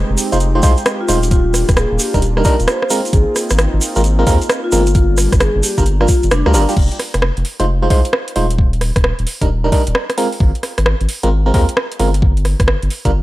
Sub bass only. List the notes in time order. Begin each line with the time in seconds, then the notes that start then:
0.10 F1
0.32 F1
0.63 C2
1.09 D#1
1.69 D#1
1.91 D#1
2.14 D#1
2.60 D#1
3.13 G#1
3.51 G#1
3.73 G#1
3.96 G#1
4.27 D#2
4.72 G1
5.32 G1
5.55 G1
5.78 G1
6.23 G1
6.31 F1
6.46 D2
6.54 G1
6.77 F1
7.14 F1
7.37 F1
7.60 F1
7.90 C2
8.36 D#1
8.96 D#1
9.19 D#1
9.41 D#1
9.87 D#1
10.40 G#1
10.78 G#1
11.01 G#1
11.23 G#1
11.54 D#2
12.00 G1
12.60 G1
12.82 G1
13.05 G1